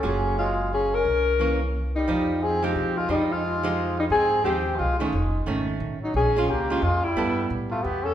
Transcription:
X:1
M:3/4
L:1/8
Q:"Swing" 1/4=177
K:Fm
V:1 name="Alto saxophone"
A2 F2 A B- | B3 z2 E- | E2 A G2 F | E F4 E |
A2 G2 F E- | E2 z3 E | A2 G2 F =E- | =E2 z F G =A |]
V:2 name="Hollow-body jazz guitar"
[_G,B,FA]4- [G,B,FA] z | z2 [=E,B,D] z3 | [F,EG]3 [F,A,EG]3 | [F,A,EG]3 [F,A,EG]3 |
z2 [F,A,EG] z2 [E,=A,D] | z2 [E,=A,^C]3 z | z [A,DF] z [A,DF] z2 | [G,=B,=A]4- [G,B,A] z |]
V:3 name="Trumpet"
D2 A,2 D D- | D3 z2 G,- | G,2 C C2 A, | G, A,4 G, |
C2 C2 A, A,- | A,2 z3 _G, | D2 B,2 A, G,- | G,2 z =A, =B, D |]
V:4 name="Upright bass" clef=bass
_G,,,6 | C,,6 | F,,4 C,2 | F,,6 |
A,,2 E,,2 C,,2 | F,,,2 ^G,,,2 =A,,,2 | B,,,2 D,,2 F,,2 | G,,2 =A,,2 =E,,2 |]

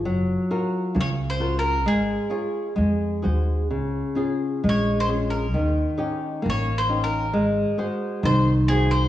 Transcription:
X:1
M:2/4
L:1/16
Q:1/4=66
K:Db
V:1 name="Mandolin"
z4 (3d2 c2 B2 | A6 z2 | z4 (3d2 c2 B2- | B z3 (3d2 c2 B2- |
B z3 c z A c |]
V:2 name="Nylon-string guitar"
G,2 [FGB]2 D,2 [FGB]2 | A,2 [FAd]2 A,2 [GAc]2 | D,2 [DFA]2 A,2 [DFA]2 | E,2 [DE=G]2 B,2 [DEG]2 |
A,2 [GAc]2 E,2 [GAc]2 |]
V:3 name="Upright bass" clef=bass
G,,,2 z2 D,,4 | A,,,2 z2 F,,2 E,,2 | D,,2 z2 B,,,4 | E,,2 z2 =A,,,4 |
A,,,2 z2 C,,4 |]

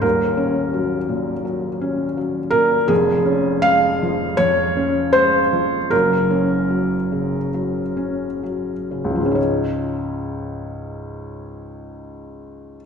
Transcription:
X:1
M:4/4
L:1/8
Q:1/4=77
K:Db
V:1 name="Felt piano"
B6 z B | A2 f2 d2 c2 | B6 z2 | [D,,A,,F,A,DEd]8 |]
V:2 name="Felt piano" clef=bass
[E,,,E,,] D G, B,, G, D G, B,, | [F,,,F,,] D A, F, F,, D A, F, | [G,,,G,,] D G, D, G, D G, D, | z8 |]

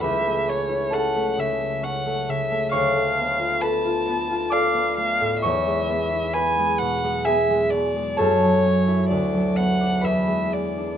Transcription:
X:1
M:3/4
L:1/16
Q:1/4=66
K:A
V:1 name="Violin"
e2 c2 f2 e2 f2 e2 | =f4 a4 f2 f2 | e4 g2 f2 e2 d2 | c4 d2 f2 e2 d2 |]
V:2 name="Harp"
[ABcabc']4 [Aa]8 | [cc']4 [Bb]4 [dd']4 | [cc']4 [Bb]4 [Gg]4 | [Aa]8 [Bb]4 |]
V:3 name="Harp"
[C,,A,CE] A, C E C A, C, A, C A, C, A, | D,, A, B, =F A F B, F A B, A, A,, | E,, G, B, E B, G, B,, G, B, G, B,, G, | F,, F, C E D,, F, B, D E,, G, B, D |]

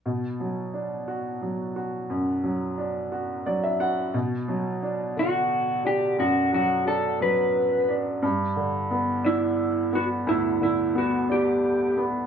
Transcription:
X:1
M:6/8
L:1/16
Q:3/8=59
K:Bm
V:1 name="Electric slide guitar"
z12 | z12 | z6 F4 G2 | F2 F2 A2 B4 z2 |
z6 E4 F2 | E2 E2 F2 G4 z2 |]
V:2 name="Upright piano"
z12 | z8 d e f2 | z12 | z12 |
z12 | z12 |]
V:3 name="Upright piano" clef=bass
B,,2 F,2 D2 F2 F,2 F2 | F,,2 F,2 D2 F2 F,2 F2 | B,,2 F,2 D2 D,4 D2 | F,,2 F,2 D2 F,4 D2 |
G,,2 D,2 B,2 D4 B,2 | D,,2 D,2 B,2 D4 B,2 |]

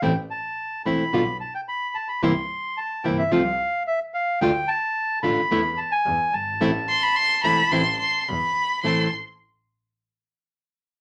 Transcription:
X:1
M:4/4
L:1/16
Q:1/4=109
K:Am
V:1 name="Violin"
z16 | z16 | z16 | z2 c' b c'2 b2 c'2 c'3/2 c'/2 b4 |
c'2 z12 z2 |]
V:2 name="Bandoneon"
g2 a4 b4 a g b2 a b | c'4 a2 g e f4 e2 f2 | g2 a4 b4 a ^g3 a2- | a12 z4 |
a2 z12 z2 |]
V:3 name="Nylon-string guitar"
[E,A,CE]2 z4 [E,A,CE]2 [B,,D,G,B,F]2 z6 | [C,E,_B,CE]2 z4 [C,E,B,CE]2 [C,F,A,CF]2 z6 | [D,A,DF]2 z4 [D,A,DF]2 [D,A,B,E]2 z6 | [E,A,CE]2 z4 [E,A,CE]2 [E,A,CE]2 z6 |
[A,,E,A,CE]2 z12 z2 |]
V:4 name="Double bass" clef=bass
A,,,2 z4 E,,,2 B,,,2 z6 | C,,2 z4 G,,,2 C,,2 z6 | D,,2 z4 A,,,2 E,,2 z2 E,,2 G,,,2 | A,,,2 z4 E,,,2 A,,,2 z2 E,,2 z2 |
A,,,2 z12 z2 |]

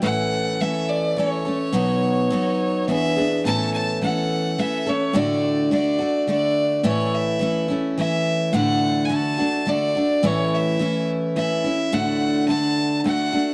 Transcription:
X:1
M:3/4
L:1/16
Q:1/4=106
K:A
V:1 name="Fiddle"
f4 e2 d2 c4- | c8 e4 | a2 a2 f4 e2 c2 | d4 d4 d4 |
c2 e4 z2 e4 | f3- f/2 g/2 a4 d4 | c2 e4 z2 e4 | f4 a4 f4 |]
V:2 name="Steel-string acoustic guitar"
[A,,E,A,CA]4 [E,A,CA]4 [E,A,CA]2 [A,CA]2 | [B,,F,B,^DF]4 [F,B,DF]4 [E,B,=DG]2 [E,B,DG]2 | [A,,E,A,CA]4 [E,A,CA]4 [E,A,CA]2 [A,CA]2 | [A,,D,A,DF]4 [D,A,DF]2 [A,DF]2 [D,A,DF]4 |
[A,,E,A,CE]4 [E,A,CE]2 [A,CE]2 [E,A,CE]4 | [A,,D,A,DF]4 [D,A,DF]2 [A,DF]2 [D,A,DF]2 [A,DF]2 | [A,,E,A,CE]4 [E,A,CE]4 [E,A,CE]2 [A,CE]2 | [A,,D,A,DF]4 [D,A,DF]4 [D,A,DF]2 [A,DF]2 |]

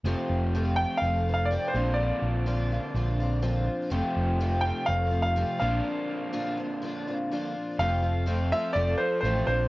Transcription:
X:1
M:4/4
L:1/16
Q:1/4=124
K:F
V:1 name="Grand piano"
z6 g2 f3 f d2 c2 | d12 z4 | z6 g2 f3 f3 f2- | f6 z8 z2 |
f6 e2 d2 c2 c2 c2 |]
V:2 name="Twelve-string acoustic guitar"
[F,,C,F,A,CF]4 [F,,C,F,A,CF]2 [F,A,CF]2 [F,A,CF]2 [F,A,CF]2 [F,,C,F,A,CF]2 [B,,F,CDF]2- | [B,,F,CDF]4 [B,,F,CDF]2 [CDF]2 [F,CDF]2 [CDF]2 [B,,F,CDF]4 | [F,,C,F,A,CF]4 [F,,C,F,A,CF]2 [F,A,CF]2 [F,A,CF]2 [F,A,CF]2 [F,,C,F,A,CF]2 [B,,F,CDF]2- | [B,,F,CDF]4 [B,,F,CDF]2 [CDF]2 [F,CDF]2 [CDF]2 [B,,F,CDF]4 |
[F,,C,F,A,CF]2 [F,A,CF]2 [F,,C,F,A,CF]2 [F,A,CF]2 [F,A,CF]4 [F,,C,F,A,CF]2 [CDF]2 |]
V:3 name="Overdriven electric guitar"
[F,,C,F,A,CF]12- [F,,C,F,A,CF]2 [B,,D,B,DF]2- | [B,,D,B,DF]12- [B,,D,B,DF]2 z2 | [F,,C,F,A,CF]12- [F,,C,F,A,CF]2 [B,,D,B,DF]2- | [B,,D,B,DF]12- [B,,D,B,DF]2 z2 |
F,,4 C2 F2 C2 F,2 A,2 B,,2 |]
V:4 name="Picked electric bass" clef=bass
F,,, z F,,,6 F,,,6 B,,,2- | B,,,2 B,,,6 B,,,8 | F,,, z F,,,6 F,,,6 B,,,2 | z16 |
F,,,8 F,,,2 z2 A,,,2 B,,,2 |]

